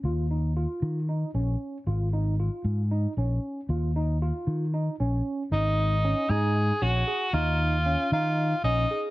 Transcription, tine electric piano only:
X:1
M:7/8
L:1/8
Q:1/4=115
K:Ebm
V:1 name="Tine electric piano"
F E F2 E D2 | F E F2 E D2 | F E F2 E D2 | E2 D E2 D A |
E2 D E2 D A |]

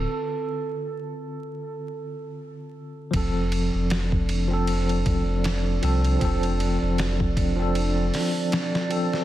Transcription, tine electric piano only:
X:1
M:4/4
L:1/16
Q:"Swing 16ths" 1/4=78
K:Flyd
V:1 name="Tine electric piano"
[D,CF]16 | [F,CA]6- [F,CA] [F,CA]6- [F,CA] [F,CA]2 | [F,CA]6- [F,CA] [F,CA]6- [F,CA] [F,CA]2 |]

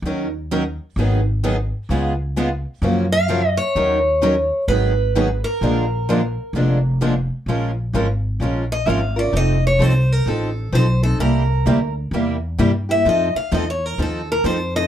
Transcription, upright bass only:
X:1
M:4/4
L:1/8
Q:"Swing" 1/4=129
K:Bbphr
V:1 name="Upright bass" clef=bass
E,,4 A,,,4 | D,,4 G,,4 | E,,4 A,,,4 | B,,,4 F,,,4 |
[K:Fphr] B,,,2 A,,,2 B,,,2 A,,,2 | F,,,2 C,,2 =A,,,2 _C,,2 | C,,2 =D,,2 =E,,2 =G,,2 | F,, z =E,,2 _E,,2 F,,2 |]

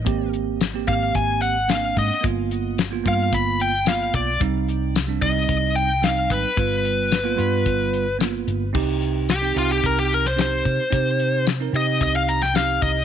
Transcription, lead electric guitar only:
X:1
M:4/4
L:1/16
Q:1/4=110
K:Cm
V:1 name="Lead electric guitar"
z6 f2 a2 ^f2 =f2 e2 | z6 f2 =b2 g2 f2 d2 | z6 e4 g2 f2 =B2- | =B12 z4 |
z4 G2 F G B G B c c4- | c4 z2 e2 e f b g f2 e2 |]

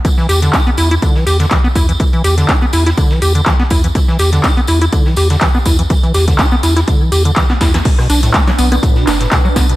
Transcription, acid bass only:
X:1
M:4/4
L:1/16
Q:"Swing 16ths" 1/4=123
K:Edor
V:1 name="Acid bass" clef=bass
E, E, G D, E B, E E D, E, G D, E, B, E E, | E, E, G D, E B, E E D, E, G D, E, B, E E, | E, E, G D, E B, E E D, E, G D, E, B, E E, | E, E, G D, E B, E E D, E, G D, E, B, E E, |
B,, B,, D A,, B, F, B, B, A,, B,, D A,, B,, F, B, B,, |]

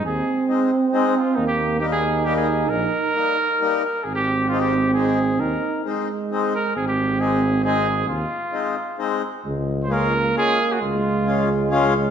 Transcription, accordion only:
X:1
M:3/4
L:1/8
Q:"Swing" 1/4=134
K:Ab
V:1 name="Accordion"
z2 [A,CE] z [A,CE] z | z2 [G,B,E] z [G,B,E] z | z2 [G,B,E] z [G,B,E] z | z2 [A,CE] z [A,CE] z |
z2 [A,CE] z [A,CE] z | z2 [A,CE] z [A,CE] z | z2 [A,CE] z [A,CE] z | [K:Db] z2 [A,DF] z [A,DF] z |
z2 [A,DF] z [A,DF] z |]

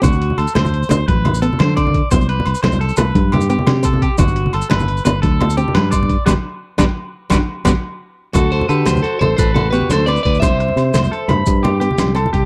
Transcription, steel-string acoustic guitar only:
X:1
M:12/8
L:1/8
Q:3/8=115
K:Dmix
V:1 name="Steel-string acoustic guitar"
C2 z A,2 A,2 z B,2 C2 | B,2 z A,2 A,2 z B,2 C2 | D2 z B,2 B,2 z C2 D2 | [G,B,D] z2 [G,B,D] z2 [G,B,D] z [G,B,D] z3 |
z3 A,2 z3 B,2 C2 | B,,2 z A,2 A,2 z B,2 C2 |]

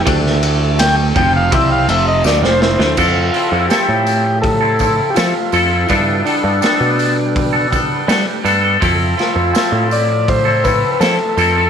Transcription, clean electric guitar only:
X:1
M:4/4
L:1/16
Q:1/4=82
K:Flyd
V:1 name="Clean electric guitar"
[D,A,D]6 [F,,C,F,]2 [C,G,C]2 [F,,C,F,]2 [D,A,] [F,,C,F,]2 [D,A,] | [F,CEA]2 [F,CEA] [CEA] [F,CEA]4- [F,CEA] [CEA] [F,CEA]2 [F,CEA]2 [F,CEA] [CEA] | [G,B,DA]2 [G,B,DA] [B,DA] [G,B,DA]4- [G,B,DA] [B,DA] [G,B,DA]2 [G,B,DA]2 [G,B,DA] [B,DA] | [F,CEA]2 [F,CEA] [CEA] [F,CEA]4- [F,CEA] [CEA] [F,CEA]2 [F,CEA]2 [F,CEA] [CEA] |]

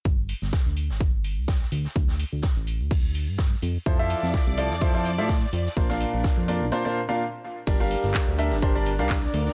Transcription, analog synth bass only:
X:1
M:4/4
L:1/16
Q:"Swing 16ths" 1/4=126
K:Gdor
V:1 name="Analog synth bass" clef=bass
G,,,2 z G,,, z D,,2 G,,,4 C,,2 z D,, z | D,,2 z D,, z A,,,2 D,,4 G,,2 z F,, z | F,,2 z F,, z C,,2 F,,4 A,,2 z F,, z | B,,,2 z B,,, z F,,2 B,,, z8 |
G,,,2 z G,,, z D,,2 G,,,4 C,,2 z D,, z |]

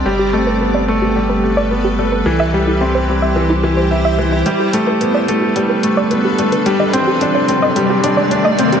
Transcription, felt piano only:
X:1
M:4/4
L:1/8
Q:1/4=109
K:G
V:1 name="Felt piano"
G, A, B, A, G, A, B, A, | E, G, C G, E, E, e E, | G, A, B, A, G, A, B, A, | G, C D C G, D D C |]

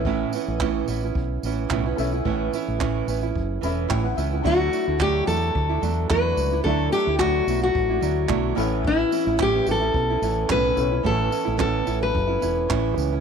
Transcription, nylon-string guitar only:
X:1
M:4/4
L:1/16
Q:"Swing 16ths" 1/4=109
K:D
V:1 name="Nylon-string guitar"
[A,,E,B,CE]2 [E,B,CE]2 [A,,E,B,CE]2 [E,B,CE] [B,CE]3 [E,B,CE]2 [A,,E,B,CE] [B,CE] [E,B,CE] [B,CE] | [A,,E,B,CE]2 [E,B,CE]2 [A,,E,B,CE]2 [E,B,CE] [B,CE]3 [E,B,CE]2 [A,,E,B,CE] [B,CE] [E,B,CE] [B,CE] | [D,F,A,DE]2 [F,A,DE] [A,DE] [D,F,A,DE]2 [F,A,DE]3 [A,DE] [F,A,DE]2 [D,F,A,DE]3 [A,DE] | [D,F,A,DE]2 [F,A,DE] [A,DE] [D,F,A,DE]2 [F,A,DE]3 [A,DE] [F,A,DE]2 [D,F,A,DE]2 [A,,E,B,CE]2- |
[A,,E,B,CE]2 [E,B,CE] [B,CE] [A,,E,B,CE]2 [E,B,CE] [B,CE]2 [B,CE] [E,B,CE]2 [A,,E,B,CE]3 [B,CE] | [A,,E,B,CE]2 [E,B,CE] [B,CE] [A,,E,B,CE]2 [E,B,CE]3 [B,CE] [E,B,CE]2 [A,,E,B,CE]3 [B,CE] |]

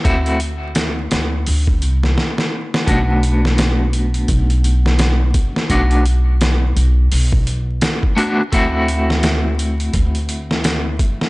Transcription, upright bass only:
X:1
M:4/4
L:1/8
Q:"Swing 16ths" 1/4=85
K:Bphr
V:1 name="Upright bass" clef=bass
D,,3 D,, D,, C,, z2 | B,,,4 B,,,3 z | B,,,3 B,,, B,,,2 z2 | D,,4 D,,3 z |]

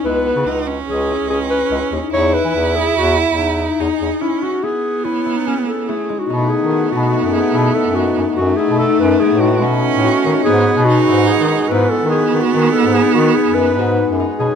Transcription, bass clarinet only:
X:1
M:5/4
L:1/16
Q:1/4=144
K:Bmix
V:1 name="Bass clarinet" clef=bass
C,,3 C, C,,4 C,,3 C,,4- C,, C,, z D,, z | E,,3 E, E,,4 E,,3 E,,4- E,, E,, z E,, z | z16 z4 | B,,3 D,3 B,,3 F,,2 z B,,2 z F,,3 F,, z |
F,,2 z B,,2 z F,,2 z A,,3 B,,3 A,,2 z D, z | G,,3 B,,3 G,,3 D,2 z G,,2 z D,3 D, z | D,2 z G,,2 z D,2 z F,,3 G,,3 F,,2 z B,, z |]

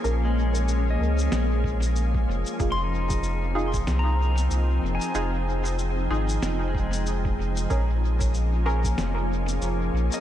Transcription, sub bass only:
X:1
M:4/4
L:1/8
Q:"Swing 16ths" 1/4=94
K:Fm
V:1 name="Sub bass" clef=bass
B,,,3 D,, B,,,3 F,,, | F,,,4 C,,2 C,, F,,, | F,,,3 A,,, F,,,3 F,,, | B,,,4 F,,,2 F,,, B,,, |]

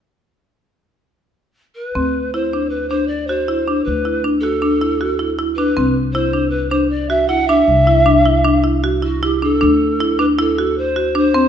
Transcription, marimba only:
X:1
M:5/4
L:1/8
Q:1/4=156
K:Dmix
V:1 name="Marimba"
z8 z2 | C2 E D2 D2 F E D- | D E D F D E F E E D | C2 E D2 D2 F E D- |
D E D E D E F E E D | D2 E D E F2 F D C |]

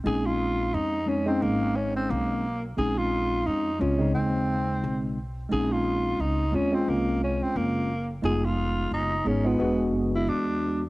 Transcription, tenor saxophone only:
X:1
M:4/4
L:1/16
Q:"Swing 16ths" 1/4=88
K:Bbm
V:1 name="Tenor saxophone"
A F3 E2 D C B,2 D C B,3 z | A F3 E2 D2 C6 z2 | A F3 E2 D C B,2 D C B,3 z | A F3 E2 D _C2 z2 =E =D3 z |]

